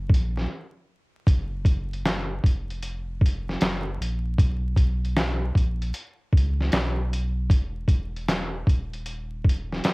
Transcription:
0.10 sub bass A#1, kick
0.14 closed hi-hat
0.37 snare
1.27 sub bass F#1, kick, closed hi-hat
1.65 kick, closed hi-hat
1.93 closed hi-hat
2.05 snare, clap, closed hi-hat
2.44 sub bass F1, kick, closed hi-hat
2.71 closed hi-hat
2.83 closed hi-hat
3.21 kick
3.26 closed hi-hat
3.49 snare
3.61 sub bass F#1, snare, clap, closed hi-hat
4.00 sub bass A#1, closed hi-hat
4.38 sub bass B1, kick, closed hi-hat
4.76 kick, closed hi-hat
5.05 closed hi-hat
5.16 snare, clap, closed hi-hat
5.55 sub bass A#1, kick, closed hi-hat
5.82 closed hi-hat
5.94 closed hi-hat
6.33 sub bass C#2, kick
6.37 closed hi-hat
6.61 snare
6.72 sub bass B1, snare, clap, closed hi-hat
7.13 closed hi-hat
7.50 sub bass E1, kick, closed hi-hat
7.88 kick, closed hi-hat
8.16 closed hi-hat
8.28 snare, clap, closed hi-hat
8.67 sub bass D#1, kick, closed hi-hat
8.94 closed hi-hat
9.06 closed hi-hat
9.45 kick
9.49 closed hi-hat
9.72 snare
9.84 snare, clap, closed hi-hat

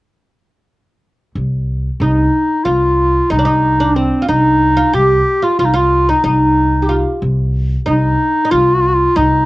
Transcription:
1.35 upright bass C2
2.00 upright bass C2, oud D#4, clarinet D#4
2.64 upright bass C2, clarinet F4, oud F4
3.30 upright bass C2, oud D#4, clarinet D#4
3.39 oud D4
3.45 oud D#4
3.80 oud D4
3.95 clarinet C4, oud C4
4.22 oud F4
4.28 upright bass C2, clarinet D#4, oud D#4
4.77 oud F4
4.94 upright bass C2, oud G4, clarinet G4
5.42 oud F4, clarinet F4
5.59 upright bass C2, clarinet F4, oud F4
5.65 clarinet D#4
5.74 oud F4, clarinet F4
6.09 oud D#4, clarinet D#4
6.24 upright bass C2, oud D#4, clarinet D#4
6.82 oud G4
6.89 oud F4
7.22 upright bass C2
7.86 upright bass C2, oud D#4, clarinet D#4
8.45 oud D#4
8.51 upright bass C2, clarinet F4, oud F4
9.16 upright bass C2, oud D#4, clarinet D#4

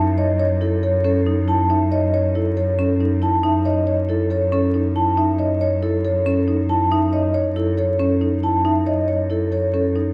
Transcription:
Already playing: cello F#2, marimba D#4, vibraphone E5
0.18 marimba C#5, vibraphone D#5
0.40 marimba C#5
0.61 marimba E4, vibraphone A4
0.83 marimba A4, vibraphone C#5
1.04 marimba C#4, vibraphone A4
1.26 marimba D#4
1.48 marimba E4, vibraphone A5
1.70 marimba D#4, vibraphone E5
1.92 marimba C#5, vibraphone D#5
2.14 marimba C#5
2.35 marimba E4, vibraphone A4
2.57 marimba A4, vibraphone C#5
2.79 marimba C#4, vibraphone A4
3.00 marimba D#4
3.22 marimba E4, vibraphone A5
3.43 marimba D#4, vibraphone E5
3.65 marimba C#5, vibraphone D#5
3.87 marimba C#5
4.09 marimba E4, vibraphone A4
4.30 marimba A4, vibraphone C#5
4.52 marimba C#4, vibraphone A4
4.74 marimba D#4
4.96 marimba E4, vibraphone A5
5.17 marimba D#4, vibraphone E5
5.38 marimba C#5, vibraphone D#5
5.61 marimba C#5
5.83 marimba E4, vibraphone A4
6.05 marimba A4, vibraphone C#5
6.26 marimba C#4, vibraphone A4
6.48 marimba D#4
6.69 marimba E4, vibraphone A5
6.91 marimba D#4, vibraphone E5
7.13 marimba C#5, vibraphone D#5
7.34 marimba C#5
7.56 marimba E4, vibraphone A4
7.77 marimba A4, vibraphone C#5
7.99 marimba C#4, vibraphone A4
8.21 marimba D#4
8.43 marimba E4, vibraphone A5
8.65 marimba D#4, vibraphone E5
8.86 marimba C#5, vibraphone D#5
9.08 marimba C#5
9.30 marimba E4, vibraphone A4
9.52 marimba A4, vibraphone C#5
9.74 marimba C#4, vibraphone A4
9.96 marimba D#4

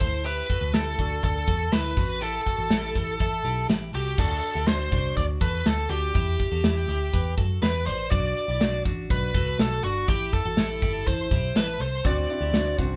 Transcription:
Already playing: lead electric guitar C5
0.00 picked electric bass D2, clean electric guitar E4 A4, kick, open hi-hat
0.25 clean electric guitar E4 G4, lead electric guitar B4, closed hi-hat
0.49 clean electric guitar F#4 A4, kick, closed hi-hat
0.61 picked electric bass D2
0.74 picked electric bass D2, clean electric guitar E4 G4, lead electric guitar A4, snare, closed hi-hat
0.98 picked electric bass D2, clean electric guitar D4 F#4, kick, closed hi-hat
1.24 picked electric bass D2, lead electric guitar A4, kick, closed hi-hat
1.48 picked electric bass E2, clean electric guitar F#4 A4, kick, closed hi-hat
1.72 picked electric bass D2, clean electric guitar E4 A4, lead electric guitar B4, snare, closed hi-hat
1.96 picked electric bass A1, clean electric guitar C4 F#4, kick, open hi-hat
2.21 clean electric guitar E4 G4, lead electric guitar A4, closed hi-hat
2.46 clean electric guitar F#4 A4, kick, closed hi-hat
2.58 picked electric bass A1
2.70 picked electric bass A1, clean electric guitar E4 G4, snare, closed hi-hat
2.95 picked electric bass A1, kick, closed hi-hat
3.20 picked electric bass A1, clean electric guitar E4 A4, kick, closed hi-hat
3.45 picked electric bass B1, clean electric guitar E4 G4, closed hi-hat
3.69 picked electric bass A1, clean electric guitar E4 G4, snare, closed hi-hat
3.93 picked electric bass C2, clean electric guitar F#4 A4, lead electric guitar G4, open hi-hat
4.18 picked electric bass D2, clean electric guitar D4 F#4, lead electric guitar A4, kick, crash
4.43 closed hi-hat
4.55 picked electric bass D2, clean electric guitar E4 G4
4.67 picked electric bass D2, clean electric guitar D4 F#4, lead electric guitar C5, snare, closed hi-hat
4.92 picked electric bass C2, clean electric guitar D4 F#4, kick, closed hi-hat
5.17 picked electric bass D2, lead electric guitar D5, kick, closed hi-hat
5.41 picked electric bass E2, clean electric guitar F#4 A4, lead electric guitar B4, kick, closed hi-hat
5.66 picked electric bass D2, lead electric guitar A4, snare, closed hi-hat
5.90 picked electric bass D2, clean electric guitar D4 F#4, lead electric guitar G4, closed hi-hat
6.14 picked electric bass E2, clean electric guitar E4 G4, kick, closed hi-hat
6.40 kick, closed hi-hat
6.51 picked electric bass E2, clean electric guitar F#4 A4
6.64 picked electric bass E2, clean electric guitar E4 G4, snare, closed hi-hat
6.88 picked electric bass D2, clean electric guitar E4 G4, closed hi-hat
7.13 picked electric bass E2, clean electric guitar G4 B4, kick, closed hi-hat
7.38 picked electric bass F#2, clean electric guitar F#4 A4, kick, closed hi-hat
7.62 picked electric bass E2, clean electric guitar G4 B4, lead electric guitar B4, snare, closed hi-hat
7.86 picked electric bass A1, clean electric guitar B4 D5, lead electric guitar C5, closed hi-hat
8.11 picked electric bass B1, clean electric guitar D4 F#4, lead electric guitar D5, kick, closed hi-hat
8.36 closed hi-hat
8.48 picked electric bass B1, clean electric guitar E4 G4
8.61 picked electric bass B1, clean electric guitar D4 F#4, snare, closed hi-hat
8.85 picked electric bass A1, clean electric guitar D4 F#4, kick, closed hi-hat
9.10 picked electric bass B1, lead electric guitar B4, kick, closed hi-hat
9.34 picked electric bass C2, clean electric guitar F#4 A4, kick, closed hi-hat
9.59 picked electric bass B1, lead electric guitar A4, snare, closed hi-hat
9.83 picked electric bass G1, clean electric guitar D4 F#4, lead electric guitar F#4, closed hi-hat
10.08 picked electric bass A1, clean electric guitar E4 G4, lead electric guitar G4, kick, closed hi-hat
10.33 lead electric guitar A4, kick, closed hi-hat
10.45 picked electric bass A1, clean electric guitar F#4 A4
10.57 picked electric bass A1, clean electric guitar E4 G4, snare, closed hi-hat
10.82 picked electric bass G1, clean electric guitar E4 G4, kick, closed hi-hat
11.06 picked electric bass A1, clean electric guitar E4 A4, lead electric guitar C5, kick, closed hi-hat
11.31 picked electric bass B1, clean electric guitar E4 G4, kick, closed hi-hat
11.55 picked electric bass A1, clean electric guitar E4 A4, lead electric guitar B4, snare, closed hi-hat
11.80 picked electric bass C2, clean electric guitar A4 C5, lead electric guitar C5, open hi-hat
12.05 picked electric bass D2, upright piano C4 D4 F#4, clean electric guitar D4 F#4, lead electric guitar D5, kick, closed hi-hat
12.29 upright piano C4 D4 E4, closed hi-hat
12.41 picked electric bass D2, clean electric guitar E4 G4
12.53 picked electric bass D2, upright piano C4 D4 F#4, clean electric guitar D4 F#4, snare, closed hi-hat
12.78 picked electric bass C2, upright piano C4 D4 F#4, clean electric guitar D4 F#4, kick, closed hi-hat

